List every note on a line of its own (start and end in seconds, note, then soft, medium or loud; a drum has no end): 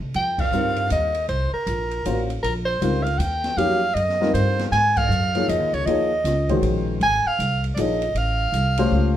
0.00 0.13 C3 medium
0.14 0.51 F2 medium
0.14 0.42 G5 loud
0.14 ride medium
0.38 0.92 F5 medium
0.38 kick medium
0.38 crash medium
0.52 0.89 G2 medium
0.52 1.11 G3 medium
0.52 1.10 C4 medium
0.52 1.11 D#4 medium
0.52 1.11 F4 medium
0.52 1.11 A#4 medium
0.52 hi-hat pedal medium
0.76 ride soft
0.90 1.28 D#2 medium
0.90 1.27 D#5 medium
0.90 hi-hat pedal medium
0.90 ride medium
1.15 ride soft
1.28 1.51 C2 medium
1.28 1.52 C5 medium
1.28 ride medium
1.54 2.26 A#4 medium
1.67 2.04 A#1 medium
1.67 hi-hat pedal medium
1.67 ride medium
1.91 ride soft
2.05 2.43 A1 medium
2.05 2.27 A#3 medium
2.05 2.28 C#4 soft
2.05 2.28 F4 medium
2.05 2.28 F#4 soft
2.05 2.28 C5 medium
2.05 hi-hat pedal medium
2.05 ride medium
2.30 ride soft
2.43 2.81 A#1 medium
2.43 2.54 A#4 loud
2.43 ride medium
2.65 3.05 C5 medium
2.81 3.18 C#2 medium
2.81 3.03 G3 medium
2.81 3.04 C4 medium
2.81 3.04 D#4 medium
2.81 3.04 F4 medium
2.81 3.04 A#4 medium
2.81 hi-hat pedal medium
2.81 ride medium
3.03 3.20 F5 medium
3.03 ride soft
3.18 3.56 D#2 medium
3.18 3.59 G5 medium
3.18 hi-hat pedal medium
3.18 ride medium
3.44 snare soft
3.44 ride soft
3.57 3.94 F2 medium
3.57 3.80 F#3 medium
3.57 3.80 A#3 medium
3.57 3.80 C#4 medium
3.57 3.80 D#4 medium
3.57 3.80 G4 medium
3.57 3.96 F5 loud
3.57 ride medium
3.94 4.33 F#2 medium
3.94 4.33 D#5 medium
3.94 ride medium
4.09 snare soft
4.21 4.70 G3 medium
4.21 4.70 C4 medium
4.21 4.70 D#4 medium
4.21 4.70 F4 medium
4.21 4.70 A#4 medium
4.21 snare soft
4.34 4.71 G2 medium
4.34 4.63 C5 medium
4.34 hi-hat pedal medium
4.34 ride medium
4.59 snare soft
4.59 ride soft
4.72 5.08 G#2 medium
4.72 4.99 G#5 loud
4.72 snare soft
4.72 ride medium
4.97 5.51 F5 loud
4.97 kick medium
4.97 crash medium
5.09 5.47 F#2 medium
5.09 hi-hat pedal medium
5.35 5.85 F3 medium
5.35 5.84 A#3 medium
5.35 5.85 D#4 medium
5.35 5.85 G#4 medium
5.35 5.85 C#5 medium
5.35 ride soft
5.48 5.60 F2 medium
5.48 5.75 D#5 medium
5.48 hi-hat pedal medium
5.48 ride medium
5.60 5.72 D#2 medium
5.73 5.85 C#2 medium
5.73 5.87 C#5 medium
5.73 ride soft
5.86 6.23 D#2 medium
5.86 6.09 F3 medium
5.86 6.09 A#3 medium
5.86 6.09 D#4 medium
5.86 6.09 G#4 medium
5.86 6.09 C#5 medium
5.86 6.57 D#5 loud
5.86 ride medium
6.24 6.61 C#2 medium
6.24 snare soft
6.24 hi-hat pedal medium
6.24 ride medium
6.49 6.98 D#3 medium
6.49 6.98 G#3 medium
6.49 6.99 C#4 medium
6.49 6.99 F#4 medium
6.49 6.99 C5 medium
6.49 kick medium
6.49 ride soft
6.62 7.00 A#1 medium
6.62 ride medium
7.00 7.23 G#1 medium
7.00 7.29 G#5 loud
7.00 ride medium
7.25 7.64 F5 loud
7.25 muted upright bass stroke soft
7.39 7.76 C2 medium
7.39 hi-hat pedal medium
7.39 ride medium
7.64 ride soft
7.75 8.14 A#1 medium
7.75 8.00 F3 medium
7.75 8.00 A#3 soft
7.75 8.00 D#4 medium
7.75 8.00 G#4 medium
7.75 7.81 D5 medium
7.75 hi-hat pedal medium
7.75 ride medium
7.79 8.00 C#5 medium
7.79 8.19 D#5 medium
8.02 ride medium
8.14 8.52 A1 medium
8.14 9.17 F5 medium
8.14 ride medium
8.52 8.90 C2 medium
8.52 hi-hat pedal medium
8.52 ride medium
8.77 9.17 A3 medium
8.77 9.17 C#4 medium
8.77 9.17 F4 medium
8.77 9.17 G4 medium
8.77 9.17 C5 medium
8.77 ride medium
8.92 9.17 C#2 medium